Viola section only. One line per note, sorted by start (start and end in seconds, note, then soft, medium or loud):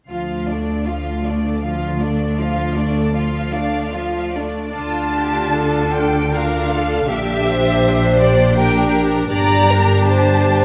0.09 0.46 F3 soft
0.49 0.88 A3 soft
0.88 1.27 F3 soft
1.26 1.64 A3 soft
1.63 1.98 F3 soft
2.01 2.39 A3 soft
2.39 2.77 F3 soft
2.77 3.15 A3 soft
3.15 3.51 F3 soft
3.53 3.93 A3 soft
3.94 4.35 F3 soft
4.36 4.77 A3 soft
4.76 6.29 D4 soft
4.76 6.29 F4 soft
6.33 7.07 D4 soft
6.33 7.07 F4 soft
7.08 8.54 D4 soft
7.08 8.56 G4 soft
8.57 9.30 D4 medium
8.57 9.30 G4 soft
9.31 10.65 D4 soft
9.31 10.65 G4 medium